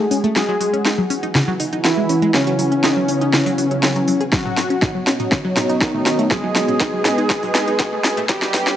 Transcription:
Already playing: G#3 F#4 G#4 C#5 F#5 G#5
0.11 C#4, open hi-hat
0.24 A3, closed hi-hat
0.36 F#3 G#3 E4 G#4 B4 F#5, snare, closed hi-hat
0.49 F#3
0.61 F#3, open hi-hat
0.73 C#4, closed hi-hat
0.85 D#4, snare, closed hi-hat
0.98 F#3
1.10 C#4, open hi-hat
1.23 D#4, closed hi-hat
1.35 C#3, snare, closed hi-hat
1.48 F#3
1.60 D#4, open hi-hat
1.73 D#4, closed hi-hat
1.85 E3 E4 F#4, snare, closed hi-hat
1.98 G#3
2.09 C#4, open hi-hat
2.22 G#3, closed hi-hat
2.34 C#3 F#3 C#4, snare, closed hi-hat
2.47 F#3, closed hi-hat
2.59 F#3, open hi-hat
2.72 C#4, closed hi-hat
2.84 D#4, snare, closed hi-hat
2.97 F#3
3.08 C#4, open hi-hat
3.21 D#4, closed hi-hat
3.33 C#3, snare, closed hi-hat
3.46 F#3, open hi-hat
3.58 F#3, open hi-hat
3.71 F#3, closed hi-hat
3.83 F#3, snare, closed hi-hat
3.96 F#3, closed hi-hat
4.08 F#3, open hi-hat
4.21 G#4, closed hi-hat
4.32 F#3 B3 F#4 C#5 D#5, kick, snare, closed hi-hat
4.45 F#3, mid tom
4.57 F#3, snare, open hi-hat
4.70 C#4, closed hi-hat
4.82 D#4, kick, snare, closed hi-hat, mid tom
4.95 F#3
5.07 C#4, snare, open hi-hat
5.20 D#4, closed hi-hat, mid tom
5.32 C#3, kick, snare, closed hi-hat
5.45 F#3
5.57 D#4, snare, mid tom, open hi-hat
5.69 D#4, closed hi-hat
5.81 D#3 D#4 F#4, kick, snare, closed hi-hat
5.94 A3, mid tom
6.06 C#4, snare, open hi-hat
6.19 A3, closed hi-hat
6.31 F#3 G#3 G#4 B4, kick, snare, closed hi-hat, mid tom
6.44 F#3
6.56 F#3, snare, open hi-hat
6.68 C#4, closed hi-hat, mid tom
6.80 D#4, kick, snare, closed hi-hat
6.93 F#3
7.05 C#4, snare, mid tom, open hi-hat
7.18 D#4, closed hi-hat
7.30 C#3, kick, snare, closed hi-hat
7.43 F#3, mid tom, open hi-hat
7.55 D#4, snare, open hi-hat
7.68 D#4, closed hi-hat
7.80 F#4, kick, snare, closed hi-hat, mid tom
7.93 A3
8.04 C#4, snare, open hi-hat
8.17 A3, closed hi-hat, mid tom
8.29 F#3 G3 D4 G4 A4 B4, kick, snare, closed hi-hat
8.42 F#3, snare
8.54 F#3, snare, mid tom, open hi-hat
8.67 C#4, snare, closed hi-hat

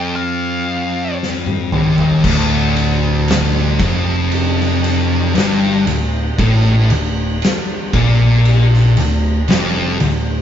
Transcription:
Already playing: F2 G5
0.16 F5
1.23 snare
1.46 high tom
1.72 D#2, mid tom
1.98 floor tom
2.24 D1 D2, kick, crash
2.77 ride
3.28 snare, ride
3.80 F1 F2, kick, ride
4.32 ride
4.60 snare
4.84 snare, ride
5.35 G1 G2, snare, ride
5.87 D1 D2, ride
6.39 A1 A2, kick, ride
6.90 D1 D2, ride
7.42 snare, ride
7.93 A#1 A#2, kick, ride
8.45 ride
8.74 snare
8.97 D1 D2, snare, ride
9.48 F1 F2, snare, ride
10.00 D1 D2, ride

